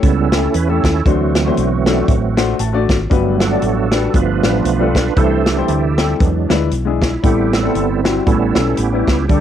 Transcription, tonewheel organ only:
0.03 C#3 G3 B3 C#4 E4 A4
0.55 B4
0.70 C#4 E4 A4
1.06 E3 F#3 A3 C4 F#4
2.08 E3 F#3 C4
3.10 F#3 A3 B3
3.41 D4 F#4 A4
4.14 F3 A3 B3 D4 F4 B4
5.16 E3 A3 D4 E4 A4 C5
5.47 E4 G4
6.20 F#3 G#3 D4
7.02 E4
7.24 G3 B3 C4 E4 G4
7.53 C4 E4 A4
8.26 G3 B3 C#4 E4 A4
8.77 B3 C#4 G4
9.28 G3 A3 D4 G4

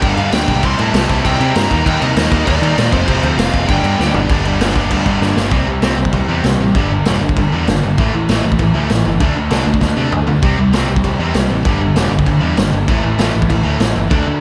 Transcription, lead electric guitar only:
0.03 F5
0.34 G5
0.65 C6
0.81 A5
1.26 G5
1.55 A#5
1.85 G5
2.02 D#5
2.46 D5
2.92 C5
3.38 F5
3.69 G5

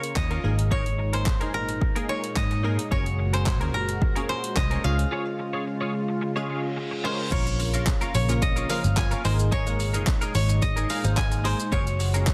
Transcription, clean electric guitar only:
0.03 muted clean electric guitar stroke
0.16 muted clean electric guitar stroke
0.31 C#4 F4 A#4
0.43 D#4 G#4 A#4
0.58 muted clean electric guitar stroke
0.71 D#4 G#4 A#4
0.86 muted clean electric guitar stroke
0.99 muted clean electric guitar stroke
1.13 D#4 G#4 A#4
1.41 D#4 G#4 A#4
1.54 muted clean electric guitar stroke
1.68 muted clean electric guitar stroke
1.81 muted clean electric guitar stroke
1.96 D#4 G#4 A#4
2.08 D#4 G#4 A#4
2.23 muted clean electric guitar stroke
2.36 muted clean electric guitar stroke
2.51 muted clean electric guitar stroke
2.63 D#4 G#4 A#4
2.78 muted clean electric guitar stroke
2.91 C#4 G#4 A#4
3.06 muted clean electric guitar stroke
3.19 muted clean electric guitar stroke
3.33 C#4 G#4 A#4
3.61 C#4 G#4 A#4
3.74 muted clean electric guitar stroke
3.88 muted clean electric guitar stroke
4.01 muted clean electric guitar stroke
4.16 C#4 G#4 A#4
4.29 C#4 G#4 A#4
4.43 muted clean electric guitar stroke
4.56 muted clean electric guitar stroke
4.71 C#4 G#4 A#4
4.84 F4 G#4 C#5
4.98 muted clean electric guitar stroke
5.11 F4 G#4 C#5
5.26 muted clean electric guitar stroke
5.39 muted clean electric guitar stroke
5.53 F4 G#4 C#5
5.66 muted clean electric guitar stroke
5.81 F4 G#4 C#5
5.94 muted clean electric guitar stroke
6.08 muted clean electric guitar stroke
6.21 muted clean electric guitar stroke
6.36 F4 G#4 C#5
6.49 F4 G#4 C#5
6.64 muted clean electric guitar stroke
6.76 muted clean electric guitar stroke
6.91 muted clean electric guitar stroke
7.04 F4 G#4 C#5
7.19 muted clean electric guitar stroke
7.31 C#4 F4 A#4
7.46 muted clean electric guitar stroke
7.59 muted clean electric guitar stroke
7.74 C#4 F4 A#4
7.88 muted clean electric guitar stroke
8.01 C#4 F4 A#4
8.14 muted clean electric guitar stroke
8.29 muted clean electric guitar stroke
8.42 muted clean electric guitar stroke
8.56 C#4 F4 A#4
8.69 C#4 F4 A#4
8.97 muted clean electric guitar stroke
9.11 C#4 F4 A#4
9.24 D#4 G#4 A#4
9.51 D#4 G#4 A#4
9.66 muted clean electric guitar stroke
9.79 muted clean electric guitar stroke
9.94 D#4 G#4 A#4
10.21 D#4 G#4 A#4
10.34 muted clean electric guitar stroke
10.49 muted clean electric guitar stroke
10.62 muted clean electric guitar stroke
10.76 D#4 G#4 A#4
10.89 D#4 G#4 A#4
11.17 muted clean electric guitar stroke
11.31 muted clean electric guitar stroke
11.44 D#4 G#4 A#4
11.59 muted clean electric guitar stroke
11.72 C#4 G#4 A#4
11.87 muted clean electric guitar stroke
12.00 muted clean electric guitar stroke
12.14 C#4 G#4 A#4

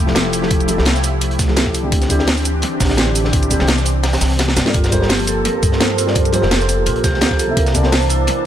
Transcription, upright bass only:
0.00 F1
0.78 C2
1.92 D2
2.80 A1
3.60 C2
4.22 C2
4.57 G2
4.75 G1
5.63 G2
6.43 F1
6.86 A#1
7.13 D2
7.57 C2

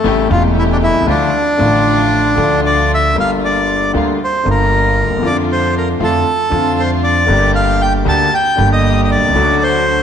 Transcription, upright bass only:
0.04 A1
0.31 E1
0.89 B1
0.95 C2
1.01 C#2
1.07 D2
1.59 A1
2.38 D2
3.16 G1
3.94 D2
4.46 G1
5.04 D2
5.10 D#2
5.17 E2
5.22 F2
6.00 F2
6.52 F2
7.29 G1
8.06 D2
8.59 G1
9.16 B1
9.22 C2
9.29 C#2
9.35 D2

